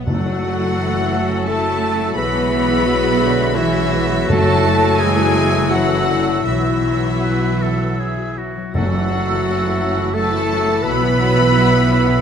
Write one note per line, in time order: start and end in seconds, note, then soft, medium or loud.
0.00 0.10 B2 medium
0.00 0.41 F#3 soft
0.00 0.10 B3 medium
0.00 0.59 E4 soft
0.00 0.94 F#4 soft
0.00 0.11 B4 soft
0.00 1.11 E5 medium
0.00 0.11 B5 medium
0.06 2.13 F#1 medium
0.06 1.09 F#2 medium
0.06 2.20 F#2 medium
0.06 1.44 F#3 medium
0.06 0.74 F#3 medium
0.06 0.73 A3 medium
0.06 2.13 A3 medium
0.06 0.41 A3 medium
0.06 4.26 E4 medium
0.06 1.49 F#4 medium
0.06 1.44 F#4 medium
0.06 2.13 A4 medium
0.06 1.43 F#5 loud
0.06 4.27 E6 medium
0.24 2.20 C#3 medium
0.43 1.98 F#3 medium
0.43 0.79 A3 medium
0.60 1.80 E4 medium
0.76 2.16 C#4 medium
0.76 1.62 A4 medium
0.81 1.14 E3 medium
0.81 1.48 A3 medium
0.95 2.84 F#4 medium
1.13 1.49 F#3 medium
1.13 1.45 E5 medium
1.30 2.19 A5 medium
1.46 2.17 A3 loud
1.46 2.17 A3 medium
1.46 1.82 E4 medium
1.46 2.17 A4 medium
1.46 3.18 E5 medium
1.46 2.17 A5 loud
1.50 2.17 F#3 medium
1.64 2.19 A4 medium
1.81 2.67 E4 medium
1.81 2.17 F#4 medium
1.99 2.51 F#3 medium
2.14 4.25 B1 medium
2.14 4.33 B2 medium
2.14 2.51 E3 medium
2.14 6.43 F#3 medium
2.14 4.30 G#3 medium
2.14 3.55 B3 medium
2.14 3.56 B3 loud
2.14 6.43 F#4 medium
2.14 2.86 G#4 medium
2.14 3.57 B4 loud
2.14 3.53 B5 loud
2.35 4.33 B3 medium
2.52 2.86 E3 medium
2.52 4.09 F#3 medium
2.68 3.01 E4 medium
2.85 3.21 F#3 medium
2.85 3.72 F#4 medium
2.85 3.53 F#4 loud
3.03 3.90 E4 medium
3.20 3.57 D3 medium
3.20 3.54 E5 medium
3.37 5.51 F#5 medium
3.54 4.28 E3 loud
3.54 4.30 E3 medium
3.54 3.91 C#4 medium
3.54 4.29 E4 loud
3.54 4.27 F#4 medium
3.54 5.34 E5 medium
3.54 4.30 E5 loud
3.73 4.97 F#4 medium
3.92 4.29 B3 loud
3.92 4.81 E4 medium
4.10 4.65 F#3 medium
4.28 6.43 F#1 loud
4.28 6.49 F#2 medium
4.28 5.31 F#2 loud
4.28 4.99 F#3 medium
4.28 5.00 A3 loud
4.28 5.73 A3 loud
4.28 8.36 E4 loud
4.28 5.01 A4 loud
4.28 5.00 A5 loud
4.28 8.37 E6 loud
4.32 4.66 F#4 medium
4.48 6.50 C#3 medium
4.65 6.26 F#3 medium
4.65 5.72 A4 medium
4.82 5.15 E4 medium
4.98 5.34 E3 loud
4.98 5.70 F#3 medium
4.98 5.71 G#3 loud
4.98 5.88 F#4 medium
4.98 5.72 G#4 loud
4.98 5.72 G#5 loud
5.16 6.07 E4 medium
5.35 5.69 E3 medium
5.35 5.70 E5 medium
5.52 7.81 F#5 medium
5.70 6.08 E3 medium
5.70 6.46 F#3 loud
5.70 6.48 C#4 medium
5.70 6.30 F#4 loud
5.70 6.46 A4 medium
5.70 7.61 E5 medium
5.70 6.47 F#5 loud
5.90 7.24 F#4 medium
6.07 6.46 D3 medium
6.07 7.04 E4 medium
6.27 6.85 F#3 medium
6.46 8.54 B1 medium
6.46 8.77 B2 medium
6.46 8.49 E3 medium
6.46 8.37 E3 medium
6.46 8.49 F#3 medium
6.46 8.37 F#3 medium
6.46 8.54 B3 medium
6.46 8.34 E4 medium
6.46 7.06 F#4 medium
6.46 8.54 F#4 medium
6.46 8.33 E5 medium
6.86 8.56 F#3 medium
7.05 7.43 E4 medium
7.23 8.17 F#4 medium
7.23 7.64 B4 medium
7.44 8.36 E4 medium
7.62 8.01 A4 medium
7.62 7.99 E5 medium
7.82 9.96 F#5 medium
7.99 8.40 G#4 medium
7.99 9.79 E5 medium
8.18 9.44 F#4 medium
8.38 9.27 E4 medium
8.38 8.75 F#4 medium
8.57 10.99 F#3 medium
8.73 10.80 F#1 medium
8.73 10.87 F#2 medium
8.73 9.77 F#2 loud
8.73 10.11 F#3 medium
8.73 8.91 F#3 medium
8.73 10.81 A3 medium
8.73 8.92 C#4 medium
8.73 12.21 E4 medium
8.73 10.16 F#4 loud
8.73 8.92 F#4 medium
8.73 10.12 A4 medium
8.73 10.12 F#5 loud
8.73 10.11 E6 medium
8.92 10.87 C#3 medium
8.92 9.11 E3 medium
8.92 9.10 A3 medium
8.92 9.11 E4 medium
9.10 9.28 F#3 medium
9.10 10.64 A3 medium
9.10 9.29 C#4 medium
9.10 9.29 F#4 medium
9.28 9.46 E3 medium
9.28 9.46 A3 medium
9.28 10.47 E4 medium
9.28 9.47 E4 medium
9.45 9.62 F#3 medium
9.45 10.31 F#4 medium
9.45 9.63 F#4 medium
9.49 9.64 C#4 medium
9.63 9.81 E3 medium
9.63 9.81 A3 medium
9.63 9.81 E4 medium
9.63 10.87 A4 medium
9.80 9.98 F#3 medium
9.80 10.00 C#4 medium
9.80 9.99 F#4 medium
9.80 10.14 E5 medium
9.97 10.16 E3 medium
9.97 10.16 A3 medium
9.97 10.16 E4 medium
9.97 12.04 F#5 medium
10.14 10.32 F#3 medium
10.14 10.84 A3 loud
10.14 10.32 C#4 medium
10.14 10.32 F#4 medium
10.14 10.84 A4 loud
10.14 10.84 A4 medium
10.14 11.85 E5 medium
10.14 10.85 A5 loud
10.14 10.82 E6 medium
10.32 10.50 E3 medium
10.32 10.51 A3 medium
10.32 10.50 E4 medium
10.32 11.50 F#4 medium
10.48 10.68 F#3 medium
10.48 10.68 C#4 medium
10.48 11.34 E4 medium
10.48 10.67 F#4 medium
10.66 10.85 E3 medium
10.66 10.86 A3 medium
10.66 10.84 A3 medium
10.66 10.81 E4 medium
10.82 12.21 B1 loud
10.82 12.21 B2 medium
10.82 11.01 F#3 medium
10.82 12.19 B3 loud
10.82 12.21 B3 medium
10.82 10.99 E4 medium
10.82 11.00 F#4 medium
10.82 12.21 B4 loud
10.82 12.20 B4 medium
10.82 12.21 B5 loud
10.82 12.19 E6 medium
11.00 11.20 E3 medium
11.00 12.21 F#3 medium
11.00 11.18 B3 medium
11.00 11.18 E4 medium
11.18 11.37 F#3 medium
11.18 12.21 B3 medium
11.18 11.34 E4 medium
11.18 11.36 F#4 medium
11.34 11.54 E3 medium
11.34 11.52 B3 medium
11.34 11.52 E4 medium
11.34 12.21 E4 medium
11.52 11.71 F#3 medium
11.52 11.69 E4 medium
11.52 12.21 F#4 medium
11.52 11.69 F#4 medium
11.70 11.89 E3 medium
11.70 11.87 B3 medium
11.70 11.87 E4 medium
11.70 12.21 B4 medium
11.86 12.05 E4 medium
11.86 12.05 F#4 medium
11.86 12.20 E5 medium
11.90 12.06 F#3 medium
12.05 12.21 E3 medium
12.05 12.21 B3 medium
12.05 12.20 E4 medium
12.05 12.21 F#5 medium